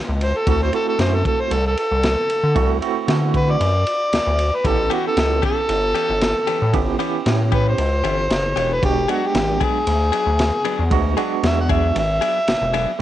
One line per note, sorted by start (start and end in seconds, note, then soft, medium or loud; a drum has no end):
0.09 0.33 C#2 medium
0.21 0.39 C5 medium
0.21 ride medium
0.37 0.47 A4 medium
0.47 0.71 D2 loud
0.47 0.68 A3 medium
0.47 0.68 C4 medium
0.47 0.68 E4 medium
0.47 0.69 F#4 medium
0.47 0.61 A4 medium
0.47 kick loud
0.47 ride medium
0.63 0.73 C5 medium
0.73 1.56 A3 medium
0.73 1.56 C4 medium
0.73 1.57 E4 medium
0.73 1.57 F#4 medium
0.73 0.87 A4 medium
0.73 ride medium
0.89 0.99 A4 medium
0.99 1.23 F#2 loud
0.99 1.16 C5 medium
0.99 snare loud
0.99 ride medium
1.15 1.25 A4 medium
1.25 1.43 A4 medium
1.25 kick medium
1.25 ride medium
1.41 1.55 C5 medium
1.51 1.75 C2 medium
1.51 1.66 A4 medium
1.51 ride medium
1.67 1.77 A4 medium
1.77 2.79 A4 medium
1.77 ride medium
1.92 2.16 C2 loud
2.03 snare loud
2.03 ride medium
2.30 ride medium
2.43 2.55 D3 medium
2.55 2.80 C2 loud
2.55 2.77 A3 medium
2.55 2.77 C4 medium
2.55 2.77 E4 medium
2.55 2.77 F#4 medium
2.55 kick loud
2.55 ride medium
2.81 3.65 A3 medium
2.81 3.65 C4 medium
2.81 3.65 E4 medium
2.81 3.65 F#4 loud
2.81 ride medium
3.08 3.57 D3 medium
3.08 snare loud
3.08 ride medium
3.34 3.52 B4 medium
3.34 kick medium
3.34 ride medium
3.51 4.57 D5 medium
3.60 3.85 F#2 medium
3.60 ride medium
3.87 ride medium
4.13 4.20 D2 soft
4.13 snare loud
4.13 ride medium
4.27 4.51 D2 medium
4.39 ride medium
4.55 4.69 B4 medium
4.64 4.89 A1 loud
4.64 4.86 B3 medium
4.64 4.86 C#4 medium
4.64 4.86 E4 medium
4.64 4.86 G4 medium
4.64 4.92 A4 loud
4.64 kick loud
4.64 ride medium
4.90 5.08 E3 medium
4.90 5.74 B3 medium
4.90 5.08 B3 medium
4.90 5.07 C#4 medium
4.90 5.74 C#4 medium
4.90 5.74 E4 medium
4.90 5.05 F#4 medium
4.90 5.07 G4 medium
4.90 5.74 G4 medium
4.90 ride medium
5.07 5.43 A4 medium
5.17 5.41 C#2 loud
5.17 snare loud
5.17 ride medium
5.42 5.60 E3 medium
5.42 5.60 B3 medium
5.42 5.60 C#4 medium
5.42 5.59 G4 medium
5.42 6.97 A4 loud
5.42 kick medium
5.42 ride medium
5.69 5.93 G1 loud
5.69 ride medium
5.95 6.12 E3 soft
5.95 6.12 B3 medium
5.95 6.12 C#4 medium
5.95 6.12 G4 medium
5.95 ride medium
6.09 6.34 G1 medium
6.21 snare loud
6.21 ride medium
6.47 6.65 E3 medium
6.47 6.65 B3 medium
6.47 6.64 C#4 medium
6.47 6.64 G4 medium
6.47 ride medium
6.62 6.73 A2 medium
6.73 6.98 G1 loud
6.73 6.95 B3 medium
6.73 6.95 C#4 medium
6.73 6.95 E4 medium
6.73 6.95 G4 loud
6.73 kick loud
6.73 ride medium
6.99 7.17 E3 medium
6.99 7.82 B3 medium
6.99 7.17 B3 medium
6.99 7.83 C#4 medium
6.99 7.16 C#4 medium
6.99 7.83 E4 medium
6.99 7.16 G4 medium
6.99 7.83 G4 medium
6.99 ride medium
7.26 7.75 A2 medium
7.26 snare loud
7.26 ride medium
7.52 7.69 E3 medium
7.52 7.69 B3 medium
7.52 7.69 C#4 medium
7.52 7.69 G4 medium
7.52 7.67 B4 medium
7.52 kick medium
7.52 ride medium
7.69 8.75 C5 medium
7.78 8.03 C#2 medium
7.78 ride medium
8.04 8.28 G1 medium
8.04 8.22 E3 medium
8.04 8.21 B3 medium
8.04 8.21 C#4 medium
8.04 8.21 G4 medium
8.04 ride medium
8.30 8.54 F#1 medium
8.30 snare loud
8.30 ride medium
8.56 8.80 E1 medium
8.56 8.74 E3 medium
8.56 8.74 B3 medium
8.56 8.73 C#4 medium
8.56 8.73 G4 medium
8.56 ride medium
8.73 8.83 B4 medium
8.82 9.07 E1 loud
8.82 9.03 G#3 medium
8.82 9.04 B3 medium
8.82 9.04 D4 medium
8.82 9.04 F#4 medium
8.82 9.09 G4 loud
8.82 kick loud
8.82 ride medium
9.08 9.26 F#3 medium
9.08 9.92 G#3 medium
9.08 9.92 B3 medium
9.08 9.26 B3 medium
9.08 9.26 D4 medium
9.08 9.92 D4 medium
9.08 9.27 F#4 medium
9.08 9.25 G#4 medium
9.08 9.92 F#5 medium
9.08 ride medium
9.26 9.65 G4 medium
9.35 9.59 G#1 loud
9.35 snare loud
9.35 ride medium
9.60 9.78 F#3 medium
9.60 9.78 B3 medium
9.60 9.78 D4 medium
9.60 9.77 G#4 medium
9.60 11.15 G#4 medium
9.60 kick medium
9.60 ride medium
9.87 10.11 D2 loud
9.87 ride medium
10.12 10.30 F#3 medium
10.12 10.30 B3 medium
10.12 10.30 D4 medium
10.12 10.29 G#4 medium
10.12 ride medium
10.27 10.51 D2 loud
10.39 snare loud
10.39 ride medium
10.65 10.83 F#3 medium
10.65 10.82 B3 medium
10.65 10.82 D4 medium
10.65 10.82 G#4 medium
10.65 ride medium
10.79 10.90 E2 medium
10.90 11.16 D2 medium
10.90 11.12 G#3 medium
10.90 11.13 B3 medium
10.90 11.13 D4 medium
10.90 11.13 F#4 loud
10.90 kick loud
10.90 ride medium
11.16 11.35 F#3 medium
11.16 12.00 G#3 medium
11.16 12.00 B3 medium
11.16 11.34 B3 medium
11.16 12.01 D4 medium
11.16 11.34 D4 medium
11.16 12.01 F#4 medium
11.16 11.34 G#4 medium
11.16 ride medium
11.43 11.92 E2 medium
11.43 11.58 E5 medium
11.43 snare loud
11.43 ride medium
11.61 11.74 F#5 medium
11.69 11.87 F#3 medium
11.69 11.87 B3 medium
11.69 11.87 D4 medium
11.69 11.86 G#4 medium
11.69 11.97 E5 medium
11.69 kick medium
11.69 ride medium
11.95 12.20 G#1 medium
11.95 12.99 E5 loud
11.95 ride medium
12.21 12.39 F#3 medium
12.21 12.39 B3 medium
12.21 12.38 D4 medium
12.21 12.38 G#4 medium
12.21 ride medium
12.48 12.55 E1 soft
12.48 snare loud
12.48 ride medium
12.62 12.86 E1 medium
12.74 12.91 F#3 medium
12.74 12.91 B3 medium
12.74 12.91 D4 medium
12.74 12.90 G#4 medium
12.74 ride medium